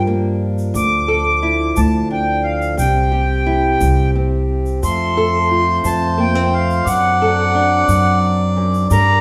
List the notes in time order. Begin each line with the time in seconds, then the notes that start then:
Already playing: G2 F3 G3 D4 F4 A#4
0.07 A#3
0.58 shaker
0.73 D2 D3 D6, shaker
1.08 A4
1.43 E4
1.76 D2 F3 A5, shaker
2.10 D4 G5
2.44 F5
2.62 shaker
2.77 C2 C3 C4 G4 G5, shaker
3.12 G4
3.46 E4
3.81 C2 G3, shaker
4.15 C4
4.66 shaker
4.82 F2 A3 F4 A4 C6, shaker
5.17 A4
5.50 F4 C5
5.84 F2 F3 A5, shaker
6.18 A#3 G5
6.35 C4
6.53 F5
6.70 shaker
6.86 F#2 F#3 D4 D5 F#5, shaker
7.22 A4
7.55 D4
7.88 F#2, shaker
8.56 F#2
8.74 shaker
8.90 G2 G3 D4 A#4 D5 A#5, shaker